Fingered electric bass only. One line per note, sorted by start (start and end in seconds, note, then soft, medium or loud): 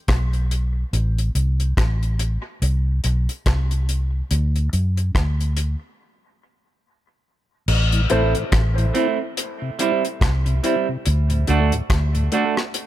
0.09 0.83 B1 loud
0.93 1.30 A1 loud
1.35 1.72 C2 medium
1.78 2.36 A1 medium
2.62 2.99 C2 medium
3.04 3.26 B1 medium
3.47 4.21 C2 medium
4.31 4.68 D2 loud
4.73 5.10 F#2 medium
5.15 5.74 D2 medium
7.68 8.05 A1 loud
8.12 8.33 A1 loud
8.53 8.90 A1 medium
10.22 10.59 C2 loud
11.07 11.43 D2 loud
11.49 11.70 D2 loud
11.90 12.27 D2 medium